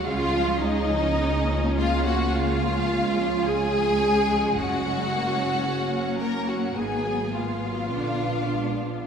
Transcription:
<<
  \new Staff \with { instrumentName = "Violin section" } { \time 4/4 \key des \mixolydian \tempo 4 = 53 f''8 ees''4 f''16 ges''16 f''4 aes''4 | ges''4. bes''16 ges''16 aes''8 f''4. | }
  \new Staff \with { instrumentName = "Violin section" } { \time 4/4 \key des \mixolydian f'8 ees'4 f'16 ges'16 f'4 aes'4 | ges'4. bes'16 ges'16 aes'8 f'4. | }
  \new Staff \with { instrumentName = "Cello section" } { \time 4/4 \key des \mixolydian aes4 bes2 aes4~ | aes4 bes2 d'4 | }
  \new Staff \with { instrumentName = "Viola section" } { \clef bass \time 4/4 \key des \mixolydian << { des'1 | des'2 ces'2 | } \\ { des16 f16 aes16 f16 des16 f16 aes16 f16 des16 f16 aes16 f16 des16 f16 aes16 f16 | des16 ges16 bes16 ges16 des16 ges16 bes16 ges16 ees16 ges16 aes16 ges16 d16 f16 aes16 f16 | } >> }
  \new Staff \with { instrumentName = "Double bass section" } { \clef bass \time 4/4 \key des \mixolydian des,1 | ges,,2 aes,,4 bes,,4 | }
>>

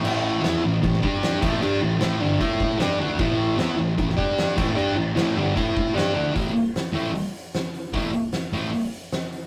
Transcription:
<<
  \new Staff \with { instrumentName = "Distorted electric guitar" } { \clef bass \time 4/4 \key g \lydian \tempo 4 = 152 <a, e a>4 <e b e'>8 <a, e>8 <a, e>8 <g d' g'>4 <a, e a>8 | <g d' g'>8 <a, e>8 <a, e a>8 <g, d g>8 <a e' a'>4 <g d' g'>8 <d a d'>8 | <a, e a>4 <e b e'>8 <a, e>8 <a, e>8 <g d' g'>4 <a, e a>8 | <g d' g'>8 <a, e>8 <a, e a>8 <g, d g>8 <a e' a'>4 <g d' g'>8 <d a d'>8 |
<a, e a>8 r4 <a, e a>8 r2 | <a, e a>8 r4 <a, e a>8 r2 | }
  \new DrumStaff \with { instrumentName = "Drums" } \drummode { \time 4/4 cymc4 <cymc sn>4 <cymc bd>16 sn16 bd8 <cymc sn>8 <cymc bd>8 | cymc4 <cymc sn>4 <cymc bd>8 bd8 <cymc sn>4 | <cymc bd>4 <cymc sn>4 <cymc bd>16 sn16 bd8 <cymc sn>8 <cymc bd>8 | cymc4 <cymc sn>4 <cymc bd>8 bd8 <cymc sn>4 |
<hho bd>8 hho8 <hho sn>8 hho8 hho8 hho8 <hho sn>8 hho8 | <hho bd>8 hho8 <hho sn>8 hho8 hho8 hho8 <hho sn>8 hho8 | }
>>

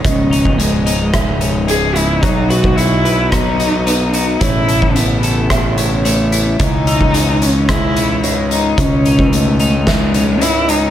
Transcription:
<<
  \new Staff \with { instrumentName = "Felt piano" } { \time 4/4 \key cis \minor \tempo 4 = 110 dis''4 r4 e''8 cis''8 cis''4 | cis''8 dis''4 r4. b'4 | cis''4 r4 e''8 cis''8 cis''4 | dis''8 e'''4 r4. cis''4 |
dis''4 r4 e''8 cis''8 cis''4 | }
  \new Staff \with { instrumentName = "Cello" } { \time 4/4 \key cis \minor cis'4 gis4. r8 gis'8 e'8 | dis'8 fis'8 e'4 dis'4. dis'8 | e'4 b4. r4. | dis'4. cis'8 e'4 r8 dis'8 |
cis'4 a4 gis4 e'8 dis'8 | }
  \new Staff \with { instrumentName = "Pedal steel guitar" } { \time 4/4 \key cis \minor <dis b>1 | <fis b fis'>1 | <cis a>1 | <e cis'>1~ |
<e cis'>1 | }
  \new Staff \with { instrumentName = "Clean electric guitar" } { \clef bass \time 4/4 \key cis \minor <cis, gis, cis gis>8 dis'8 gis8 dis'8 gis8 cis8 gis,8 gis8 | b,8 b'8 fis'8 b'8 fis'8 dis'8 b8 fis'8 | a,8 a'8 e'8 a'8 e'8 cis'8 a8 e'8 | cis,8 dis'8 gis4 gis8 cis8 gis,4 |
cis,8 dis'4 dis'8 gis8 cis8 gis,8 gis8 | }
  \new Staff \with { instrumentName = "Fingered electric bass" } { \clef bass \time 4/4 \key cis \minor cis,,1 | b,,1 | a,,1 | cis,1 |
cis,1 | }
  \new DrumStaff \with { instrumentName = "Drums" } \drummode { \time 4/4 <hh bd>8 hh16 bd16 hh8 hh8 <hh bd ss>8 hh8 hh8 hh8 | <hh bd>8 hh16 bd16 hh8 hh8 <hh bd ss>8 hh8 hh8 hh8 | <hh bd>8 hh16 bd16 hh8 hh8 <hh bd ss>8 hh8 hh8 hh8 | <hh bd>8 hh16 bd16 hh8 hh8 <hh bd ss>8 hh8 hh8 hh8 |
<hh bd>8 hh16 bd16 hh8 hh8 <hh bd sn>8 hh8 hh8 hh8 | }
>>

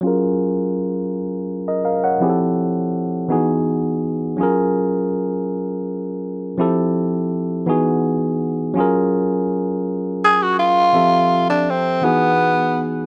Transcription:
<<
  \new Staff \with { instrumentName = "Tine electric piano" } { \time 6/8 \key fis \major \tempo 4. = 55 << { r2 r16 <ais' dis''>16 <ais' eis''>16 <cis'' fis''>16~ | <cis'' fis''>16 r2 r8. | r2. | r2. |
r2. | r2. | } \\ { <fis cis' eis' gis' ais'>2. | <f c' e' g' gis' a'>4. <e b dis' fis' gis'>4. | <fis cis' eis' gis' ais'>2. | <f c' e' g' a'>4. <e b dis' fis' gis'>4. |
<fis cis' eis' gis' ais'>2. | <f c' g' a' e''>4. <e b dis' fis' gis'>4. | } >> }
  \new Staff \with { instrumentName = "Tenor saxophone" } { \time 6/8 \key fis \major r2. | r2. | r2. | r2. |
r2 gis'16 fis'16 eis'8~ | eis'8. d'16 c'8 b4 r8 | }
>>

